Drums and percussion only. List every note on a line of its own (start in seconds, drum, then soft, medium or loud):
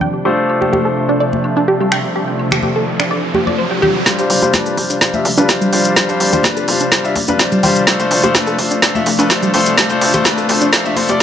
0.01 low conga medium
0.50 high woodblock medium
0.62 high conga medium
0.73 high conga medium
1.33 high conga medium
1.44 high woodblock medium
1.81 high woodblock medium
1.92 finger snap medium
2.39 high woodblock medium
2.51 finger snap medium
2.51 high conga medium
2.51 low conga medium
2.63 high conga medium
3.00 finger snap medium
3.34 high conga medium
3.34 high woodblock medium
3.47 high conga medium
3.83 low conga medium
4.06 kick loud
4.06 snare soft
4.06 closed hi-hat medium
4.06 maracas medium
4.19 closed hi-hat soft
4.19 maracas soft
4.30 open hi-hat loud
4.42 closed hi-hat medium
4.42 high conga medium
4.42 maracas medium
4.53 kick loud
4.53 snare soft
4.53 closed hi-hat medium
4.53 high conga loud
4.53 maracas medium
4.66 closed hi-hat soft
4.66 maracas soft
4.77 kick medium
4.77 open hi-hat loud
4.90 closed hi-hat medium
4.90 maracas medium
5.01 kick loud
5.01 snare soft
5.01 closed hi-hat medium
5.01 maracas medium
5.13 high conga medium
5.13 maracas soft
5.25 open hi-hat loud
5.37 closed hi-hat medium
5.37 maracas medium
5.49 kick loud
5.49 snare soft
5.49 closed hi-hat medium
5.49 maracas medium
5.61 closed hi-hat soft
5.61 maracas soft
5.73 open hi-hat loud
5.85 closed hi-hat medium
5.85 maracas medium
5.96 kick loud
5.96 snare medium
5.96 closed hi-hat medium
5.96 maracas medium
6.09 closed hi-hat soft
6.09 maracas soft
6.20 open hi-hat loud
6.33 closed hi-hat medium
6.33 high conga medium
6.33 low conga medium
6.33 maracas medium
6.43 kick loud
6.43 snare medium
6.43 closed hi-hat medium
6.43 high conga medium
6.43 maracas medium
6.57 closed hi-hat soft
6.57 maracas soft
6.68 open hi-hat loud
6.80 closed hi-hat medium
6.80 maracas medium
6.92 kick loud
6.92 snare medium
6.92 closed hi-hat medium
6.92 maracas medium
7.04 maracas soft
7.16 kick medium
7.16 open hi-hat loud
7.16 high conga medium
7.28 closed hi-hat soft
7.28 high conga loud
7.28 maracas medium
7.39 kick loud
7.39 snare medium
7.39 closed hi-hat medium
7.39 maracas medium
7.52 closed hi-hat soft
7.52 maracas soft
7.63 open hi-hat loud
7.63 low conga medium
7.76 closed hi-hat medium
7.76 maracas medium
7.87 kick loud
7.87 snare medium
7.87 closed hi-hat medium
7.87 maracas medium
8.00 closed hi-hat soft
8.00 maracas soft
8.11 open hi-hat loud
8.23 closed hi-hat soft
8.23 high conga medium
8.23 maracas medium
8.35 kick loud
8.35 snare medium
8.35 closed hi-hat medium
8.35 high conga medium
8.35 maracas medium
8.47 closed hi-hat soft
8.47 maracas soft
8.58 kick medium
8.58 open hi-hat loud
8.71 closed hi-hat soft
8.71 maracas medium
8.82 kick loud
8.82 snare medium
8.82 closed hi-hat medium
8.82 maracas medium
8.95 high conga medium
8.95 maracas soft
9.06 open hi-hat loud
9.19 closed hi-hat soft
9.19 maracas medium
9.30 kick loud
9.30 snare medium
9.30 closed hi-hat medium
9.30 maracas medium
9.43 closed hi-hat soft
9.43 maracas soft
9.54 open hi-hat loud
9.66 closed hi-hat medium
9.66 maracas medium
9.78 kick loud
9.78 snare medium
9.78 closed hi-hat medium
9.78 maracas medium
9.89 closed hi-hat soft
9.89 maracas soft
10.01 open hi-hat loud
10.14 closed hi-hat soft
10.14 high conga medium
10.14 low conga medium
10.14 maracas medium
10.25 kick loud
10.25 snare medium
10.25 closed hi-hat medium
10.25 high conga medium
10.25 maracas medium
10.38 closed hi-hat soft
10.38 maracas soft
10.49 open hi-hat loud
10.61 closed hi-hat medium
10.61 maracas medium
10.73 kick loud
10.73 snare medium
10.73 closed hi-hat medium
10.73 maracas medium
10.85 maracas soft
10.96 kick medium
10.96 open hi-hat loud
10.96 high conga medium
11.08 closed hi-hat medium
11.08 high conga loud
11.08 maracas medium